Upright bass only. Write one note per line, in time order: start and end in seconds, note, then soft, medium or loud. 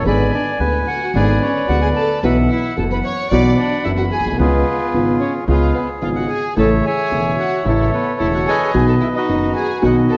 0.06 0.29 G#1 medium
0.60 0.83 D2 soft
1.14 1.37 G#1 medium
1.69 1.92 D2 soft
2.23 2.46 B1 medium
2.77 3.00 F#1 soft
3.31 3.54 B1 medium
3.86 4.08 F#1 soft
4.19 4.25 A#1 soft
4.26 4.32 B1 soft
4.32 4.39 C2 medium
4.39 4.62 C#2 medium
4.94 5.16 G#1 soft
5.48 5.71 C#2 medium
6.02 6.25 G#1 soft
6.57 6.80 A1 medium
7.12 7.34 E1 soft
7.66 7.88 A1 medium
8.20 8.43 E1 soft
8.74 8.97 B1 medium
9.29 9.51 F#1 soft
9.83 10.06 B1 medium